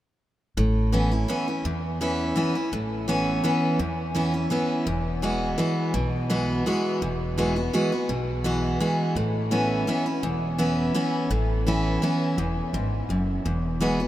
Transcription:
0.57 upright bass A1, steel-string acoustic guitar A2
0.92 steel-string acoustic guitar E3 B3 C#4 E4
1.11 steel-string acoustic guitar C#4 E4
1.28 steel-string acoustic guitar E3 B3 C#4 E4
1.48 steel-string acoustic guitar C#4 E4
1.64 upright bass E2, steel-string acoustic guitar E2
2.01 steel-string acoustic guitar E3 B3 C#4 E4
2.36 steel-string acoustic guitar E3 B3 C#4 E4
2.55 steel-string acoustic guitar C#4 E4
2.72 upright bass A1, steel-string acoustic guitar A2
3.08 steel-string acoustic guitar E3 B3 C#4 E4
3.44 steel-string acoustic guitar E3 B3 C#4 E4
3.79 upright bass E2, steel-string acoustic guitar E2
4.15 steel-string acoustic guitar E3 B3 C#4 E4
4.34 steel-string acoustic guitar C#4 E4
4.50 steel-string acoustic guitar E3 B3 C#4 E4
4.86 upright bass E1, steel-string acoustic guitar E2
5.22 steel-string acoustic guitar E3 G#3 B3 F#4
5.58 steel-string acoustic guitar E3 G#3 B3 F#4
5.94 upright bass B1, steel-string acoustic guitar B2
6.30 steel-string acoustic guitar E3 G#3 B3 F#4
6.66 steel-string acoustic guitar E3 G#3 B3 F#4
7.02 upright bass E1, steel-string acoustic guitar E2
7.38 steel-string acoustic guitar E3 G#3 B3 F#4
7.56 steel-string acoustic guitar B3 F#4
7.73 steel-string acoustic guitar E3 G#3 B3 F#4
7.92 steel-string acoustic guitar B3 F#4
8.09 upright bass B1, steel-string acoustic guitar B2
8.44 steel-string acoustic guitar E3 G#3 B3 F#4
8.80 steel-string acoustic guitar E3 G#3 B3 F#4
9.15 upright bass A1, steel-string acoustic guitar A2
9.51 steel-string acoustic guitar E3 B3 C#4 E4
9.87 steel-string acoustic guitar E3 B3 C#4 E4
10.06 steel-string acoustic guitar C#4 E4
10.23 upright bass E1, steel-string acoustic guitar E2
10.58 steel-string acoustic guitar E3 B3 C#4 E4
10.94 steel-string acoustic guitar E3 B3 C#4 E4
11.30 upright bass A1, steel-string acoustic guitar A2
11.67 steel-string acoustic guitar E3 B3 C#4 E4
12.02 steel-string acoustic guitar E3 B3 C#4 E4
12.38 upright bass E1, steel-string acoustic guitar E2
12.73 upright bass G#1, steel-string acoustic guitar G#2
13.09 upright bass F#1, steel-string acoustic guitar F#2
13.45 upright bass E1, steel-string acoustic guitar E2
13.80 steel-string acoustic guitar E3 G#3 B3 F#4
14.00 steel-string acoustic guitar B3 F#4

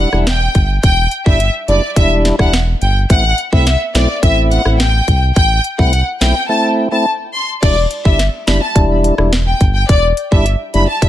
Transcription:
0.12 analog synth bass E1, tonewheel organ G3 D4 E4, cross-stick
0.27 violin section G5, snare, closed hi-hat
0.55 analog synth bass G1, kick, closed hi-hat
0.83 analog synth bass E1, violin section G5, kick, closed hi-hat
1.11 closed hi-hat
1.26 analog synth bass G1, tonewheel organ G3 D4 E4, violin section E5, kick
1.40 closed hi-hat
1.68 analog synth bass F#1, tonewheel organ G3 D4 E4, violin section D5, closed hi-hat
1.96 analog synth bass E1, tonewheel organ G3 D4 E4, violin section E5, kick, closed hi-hat
2.25 snare, closed hi-hat
2.39 analog synth bass E1, tonewheel organ G3 D4 E4, violin section F#5, kick, cross-stick
2.53 snare, closed hi-hat
2.82 analog synth bass G1, violin section G5, closed hi-hat
3.10 analog synth bass A1, tonewheel organ A3 C4 E4, violin section F#5, kick, closed hi-hat
3.38 closed hi-hat
3.52 analog synth bass C2, tonewheel organ A3 C4 E4, violin section E5, kick
3.67 snare, closed hi-hat
3.94 analog synth bass B1, tonewheel organ A3 C4 E4, violin section D5, snare, closed hi-hat
4.23 analog synth bass A1, tonewheel organ A3 C4 E4, violin section E5, kick, closed hi-hat
4.51 violin section F#5, closed hi-hat
4.65 analog synth bass A1, tonewheel organ A3 C4 E4, cross-stick
4.80 violin section G5, snare, closed hi-hat
5.08 analog synth bass C2, kick, closed hi-hat
5.36 analog synth bass A1, violin section G5, kick, closed hi-hat
5.64 closed hi-hat
5.78 analog synth bass C2, tonewheel organ A3 C4 E4, violin section F#5, kick
5.93 closed hi-hat
6.21 analog synth bass B1, tonewheel organ A3 C4 E4, violin section G5, snare, closed hi-hat
6.49 tonewheel organ A3 C4 E4, violin section A5
6.92 tonewheel organ A3 C4 E4, violin section A5
7.34 violin section C6
7.62 analog synth bass E1, tonewheel organ G3 D4 E4, violin section D5, kick, closed hi-hat, crash
7.91 closed hi-hat
8.05 analog synth bass G1, tonewheel organ G3 D4 E4, violin section E5, kick
8.19 snare, closed hi-hat
8.47 analog synth bass F#1, tonewheel organ G3 D4 E4, violin section B5, snare, closed hi-hat
8.62 violin section A5
8.76 analog synth bass E1, tonewheel organ G3 D4 E4, kick, closed hi-hat
9.04 closed hi-hat
9.18 analog synth bass E1, tonewheel organ G3 D4 E4, cross-stick
9.33 snare, closed hi-hat
9.47 violin section G5
9.61 analog synth bass G1, kick, closed hi-hat
9.75 violin section G5
9.89 analog synth bass E1, violin section D5, kick, closed hi-hat
10.17 closed hi-hat
10.31 analog synth bass G1, tonewheel organ G3 D4 E4, violin section E5, kick
10.46 closed hi-hat
10.74 analog synth bass F#1, tonewheel organ G3 D4 E4, violin section B5, closed hi-hat
10.88 violin section A5
11.02 analog synth bass E1, tonewheel organ G3 D4 E4, violin section E5, kick, closed hi-hat

